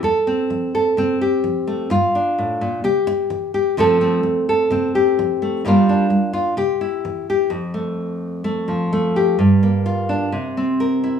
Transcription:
0.03 F2 A4
0.27 C4
0.50 F3
0.75 A4
0.97 C3 C4
1.21 G4
1.44 F3
1.67 A3
1.90 G2 F4
2.15 D4
2.38 A2
2.61 A#2
2.84 C3 G4
3.07 muted nylon-string guitar stroke
3.30 E3
3.54 G4
3.77 F2 F3 A3 C4 A4
4.01 C4
4.23 F3
4.49 A4
4.70 C3 C4
4.95 G4
5.19 F3
5.42 A3
5.65 G2 G3 A#3 D4 F4
5.89 D4
6.10 G3
6.33 F4
6.57 C3 G4
6.81 E4
7.05 E3
7.30 G4
7.50 F2
7.74 A3
8.44 A3
8.68 F3
8.93 A3
9.16 G4
9.39 G2
9.63 A#3
9.86 F4
10.09 D4
10.32 C3
10.57 C4
10.80 A#4
11.04 E4

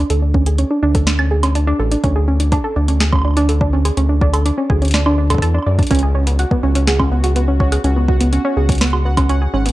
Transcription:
0.10 D2 A4, closed hi-hat
0.22 D4
0.34 C#4, kick
0.46 G#4, closed hi-hat
0.58 C#4, closed hi-hat
0.71 D4
0.83 D2 D4
0.95 A4, kick, closed hi-hat
1.07 D4, snare, closed hi-hat, high woodblock
1.19 C#4, high woodblock
1.31 G#4
1.43 C#4, closed hi-hat, high woodblock
1.55 D4, closed hi-hat
1.67 D4
1.79 A1 A4
1.91 D4, closed hi-hat
2.04 D2 C#4, kick, closed hi-hat
2.16 G#4
2.28 C#4
2.40 D4, closed hi-hat
2.52 D4, kick, closed hi-hat
2.64 A4
2.76 D2 D4
2.88 C#4, closed hi-hat
3.00 G#4, snare, closed hi-hat
3.12 C#4, kick, high woodblock
3.16 high woodblock
3.19 high woodblock
3.22 D4, high woodblock
3.25 high woodblock
3.28 high woodblock
3.31 high woodblock
3.34 D4, closed hi-hat, high woodblock
3.49 A4, closed hi-hat
3.61 D4, kick
3.73 C#4
3.85 G#4, closed hi-hat, high woodblock
3.97 D2 C#4, closed hi-hat
4.09 D4
4.21 D4, kick
4.33 A4, closed hi-hat, high woodblock
4.45 D4, closed hi-hat
4.58 C#4
4.70 D2 G#4, kick
4.82 C#4, closed hi-hat
4.85 closed hi-hat
4.88 closed hi-hat
4.91 D4, snare, closed hi-hat, high woodblock
5.06 D4, high woodblock
5.18 D4
5.30 A4, kick, closed hi-hat, high woodblock
5.34 kick
5.38 A4, kick, closed hi-hat
5.42 E2
5.54 D4, high woodblock
5.58 high woodblock
5.62 D5, high woodblock
5.66 F#2
5.78 D4, kick, closed hi-hat
5.83 closed hi-hat
5.87 C#4 F#4 F#5, closed hi-hat
5.91 C#2, kick, closed hi-hat
5.95 closed hi-hat
5.99 G#4, closed hi-hat
6.15 C#4
6.27 B3, closed hi-hat
6.39 F#4, closed hi-hat
6.51 B3, kick
6.63 C#2 C#4
6.75 C#4, closed hi-hat
6.87 G#4, snare, closed hi-hat
6.99 C#4, kick, high woodblock
7.12 B3
7.24 F#4, closed hi-hat
7.36 B3, closed hi-hat
7.48 C#4
7.60 C#4, kick
7.72 G#4, closed hi-hat, high woodblock
7.84 C#2 C#4, closed hi-hat
7.96 B3
8.08 F#4, kick
8.21 B3, closed hi-hat
8.33 C#4, closed hi-hat
8.45 C#4
8.57 C#2 G#4
8.69 C#4, kick, closed hi-hat
8.72 closed hi-hat
8.75 closed hi-hat
8.78 B3, snare, closed hi-hat
8.81 closed hi-hat, high woodblock
8.90 F#4, closed hi-hat, high woodblock
9.05 B3
9.17 C#4, kick, closed hi-hat, high woodblock
9.29 C#4, closed hi-hat
9.42 G#4
9.54 G#1 C#4
9.66 B3, closed hi-hat
9.69 closed hi-hat

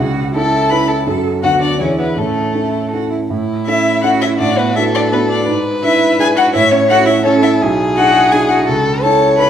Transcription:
0.00 C#2 F#4
0.35 C#4 E4 A4 A5
0.70 C#4 E4 A4 B4 B5
0.88 A4 A5
1.06 F#2 C#4 F#4 A4
1.43 D2 B3 F#4 A4 F#5
1.61 D4 D5
1.80 E2 C#4 D4 E4 G#4 C#5
1.99 B3 B4
2.17 A2 A3 C#4 A4
2.55 C#4 E4 A4
2.91 C#4 E4 F#4 A4
3.11 E4
3.30 A2 E4
3.66 C#4 E4 A4 E5
4.03 C#4 E4 F#4 A4 F#5
4.21 E4 E5
4.39 A2 D4 F#4 D5
4.58 B3 B4
4.76 D4 E4 F#4 A4 B4 E5
4.95 D4 D5
5.12 B3 D4 F#4 B4
5.29 D4 D5
5.47 G#2 B4
5.82 D4 E4 B4 E5
6.19 D4 E4 G#4 B4 G#5
6.36 F#4 F#5
6.54 A2 E4 C#5 E5
6.71 C#4 C#5
6.88 C#4 E4 F#4 A4 F#5
7.06 E4 E5
7.24 C#4 E4 A4 C#5
7.43 E4 E5
7.62 B1 G#4
7.96 D4 E4 F#4 G#4 F#5
8.32 D4 E4 G#4 G#5
8.48 F#4 F#5
8.68 C#2 A4
9.02 C#4 E4 A4 C#5 A5
9.38 C#4 E4 A4 B4 B5

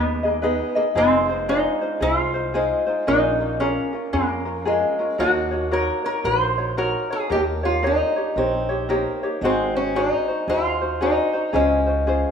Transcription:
Already playing: D#2 G#3 B3 D#4 G#4 B4 D#5
0.23 D#4 G#4 D#5
0.28 A#3
0.42 B3 D#4 G#4 B4 D#5
0.75 A#3 D#4 G#4 D#5
0.95 F1 G#3 C4 D#4 F4 G#4 C5
1.29 D#4 F4 C5
1.48 D#4 F4 G#4 C5
1.81 D#4 F4 C5
2.00 C2 D#4 F4 G#4 C5
2.34 D#4 F4 C5
2.54 G#3 D#4 F4 G#4 C5
2.86 D#4 F4 C5
3.07 A#1 A#3 C#4 D#4 F4 G#4 A#4
3.40 C#4 F4 A#4
3.60 C#4 F4 G#4 A#4
3.93 C#4 F4 A#4
4.13 F2 A#3 C#4 F4 G#4 A#4
4.45 C#4 F4 A#4
4.65 G#3 C#4 F4 G#4 A#4
4.99 C#4 F4 A#4
5.18 D#2 A#3 D#4 F#4 A#4 C#5
5.51 D#4 F#4 C#5
5.71 D#4 F#4 A#4 C#5
6.04 D#4 F#4 A#4 C#5
6.24 A#1 D#4 F#4 A#4 C5 C#5
6.58 D#4 F#4 C#5
6.77 D#4 F#4 A#4 C#5
7.10 D#4 F#4 G#4 C#5
7.29 D#2 A#3 D#4 G4 A#4 C#5
7.63 D#4 F4 G4 C#5
7.83 D#4 G4 A#4 C#5
8.07 G#3
8.16 D#4 G4 C#5
8.36 A#1 C4 D#4 G4 A#4 C#5
8.69 D#4 G4 C#5
8.89 A#3 D#4 G4 A#4 C#5
9.23 D#4 G4 C#5
9.41 G#1 G#3 C4 D#4 F#4 G#4 C5
9.75 C#4 D#4 F#4 C5
9.95 D#4 F#4 G#4 C5
10.28 D#4 F#4 C5
10.48 D#2 D#4 F4 F#4 G#4 C5
10.81 D#4 F#4 C5
11.01 D#4 F#4 G#4 C5
11.33 D#4 F#4 C5
11.53 C#2 G#3 C#4 F4 G#4 C5
11.86 C#4 F4 C5
12.07 C#4 F4 G#4 C5

